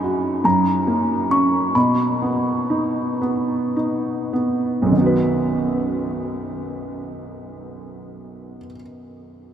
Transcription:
Already playing: felt piano F#2 D#4, music box B5
0.03 felt piano F#4
0.44 felt piano F#2, music box A#5
0.87 felt piano A#3
1.30 felt piano C#4, music box C#6
1.75 felt piano B2, music box B5
2.22 felt piano B3
2.70 felt piano D#4
3.21 felt piano B3
3.76 felt piano D#4
4.33 felt piano B3
4.82 felt piano B1
4.87 felt piano F#2
4.92 felt piano D#3
4.97 felt piano B3
5.01 felt piano F#4
5.06 felt piano B4

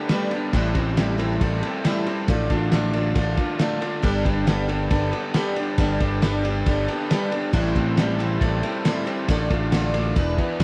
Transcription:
Already playing: overdriven electric guitar B3 D4 A4, accordion D4 G4 A4 B4, steel-string acoustic guitar G4
0.09 steel-string acoustic guitar G3 A3 D4 G4 B4, snare, ride
0.31 overdriven electric guitar B3, steel-string acoustic guitar D4 G4 B4, ride
0.53 picked electric bass A1, steel-string acoustic guitar A2 E3 G3 C4 E4 A4, accordion E4 G4 A4 C5, kick, crash
0.75 picked electric bass A1, steel-string acoustic guitar G3 C4 E4 A4, kick, ride
0.97 steel-string acoustic guitar A2 E3 G3 C4 E4 A4, snare, ride
1.18 steel-string acoustic guitar G3 C4 E4 A4, ride
1.41 picked electric bass A1, steel-string acoustic guitar G3 C4 E4 A4, kick, ride
1.63 steel-string acoustic guitar G3 C4 E4 A4, ride
1.84 steel-string acoustic guitar A2 E3 G3 C4 E4 A4, snare, ride
2.06 steel-string acoustic guitar G3 C4 E4 A4, ride
2.28 picked electric bass A1, steel-string acoustic guitar A2 F3 A3 D4 F4 A4, accordion D4 F4 A4 D5, kick, ride
2.50 picked electric bass A1, steel-string acoustic guitar A3 D4 F4 A4, kick, ride
2.72 steel-string acoustic guitar A2 F3 A3 D4 F4 A4, overdriven electric guitar D3, snare, ride
2.93 steel-string acoustic guitar A3 D4 F4 A4, ride
3.15 picked electric bass A1, steel-string acoustic guitar A3 D4 F4 A4, kick, ride
3.37 steel-string acoustic guitar A3 D4 F4 A4, kick, ride
3.59 steel-string acoustic guitar A2 F3 A3 D4 F4 A4, overdriven electric guitar D3, snare, ride
3.81 steel-string acoustic guitar A3 D4 F4 A4, ride
4.02 picked electric bass G1, steel-string acoustic guitar G3 B3 D4 G4 A4, accordion D4 G4 A4 B4, kick, crash
4.24 picked electric bass G1, steel-string acoustic guitar D4 G4 A4, kick, ride
4.47 steel-string acoustic guitar G3 B3 D4 G4 A4, snare, ride
4.68 steel-string acoustic guitar D4 G4 A4, ride
4.90 picked electric bass G1, steel-string acoustic guitar B3 D4 G4 A4, kick, ride
5.12 overdriven electric guitar B3, steel-string acoustic guitar D4 G4 A4, ride
5.34 steel-string acoustic guitar G3 B3 D4 G4 A4, snare, ride
5.56 steel-string acoustic guitar D4 G4 A4, ride
5.78 picked electric bass G1, steel-string acoustic guitar G3 B3 D4 G4 A4, kick, ride
6.00 picked electric bass G1, steel-string acoustic guitar D4 G4 A4, kick, ride
6.22 steel-string acoustic guitar G3 B3 D4 G4 A4, snare, ride
6.43 steel-string acoustic guitar D4 G4 A4, ride
6.66 picked electric bass G1, steel-string acoustic guitar B3 D4 G4 A4, kick, ride
6.88 overdriven electric guitar B3, steel-string acoustic guitar D4 G4 A4, ride
7.11 steel-string acoustic guitar G3 B3 D4 G4 A4, snare, ride
7.31 steel-string acoustic guitar D4 G4 A4, ride
7.53 picked electric bass A1, steel-string acoustic guitar A2 E3 G3 C4 E4 A4, accordion E4 G4 A4 C5, kick, crash
7.75 picked electric bass A1, steel-string acoustic guitar G3 C4 E4 A4, kick, ride
7.97 steel-string acoustic guitar A2 E3 G3 C4 E4 A4, snare, ride
8.19 steel-string acoustic guitar G3 C4 E4 A4, ride
8.41 picked electric bass A1, steel-string acoustic guitar G3 C4 E4 A4, kick, ride
8.63 steel-string acoustic guitar G3 C4 E4 A4, ride
8.85 steel-string acoustic guitar A2 E3 G3 C4 E4 A4, snare, ride
9.06 steel-string acoustic guitar G3 C4 E4 A4, ride
9.28 picked electric bass A1, steel-string acoustic guitar A2 D3 A3 D4 F4 A4, accordion D4 F4 A4 D5, kick, ride
9.50 picked electric bass A1, steel-string acoustic guitar A3 D4 F4 A4, kick, ride
9.72 steel-string acoustic guitar A2 D3 A3 D4 F4 A4, snare, ride
9.94 steel-string acoustic guitar A3 D4 F4 A4, ride
10.16 picked electric bass E1, overdriven electric guitar E2, steel-string acoustic guitar G#3 D4 E4 B4, accordion D4 E4 G#4 B4, kick, ride
10.38 overdriven electric guitar B3, steel-string acoustic guitar D4 E4 B4, kick, ride
10.60 picked electric bass F#1, steel-string acoustic guitar E3 G#3, snare, ride

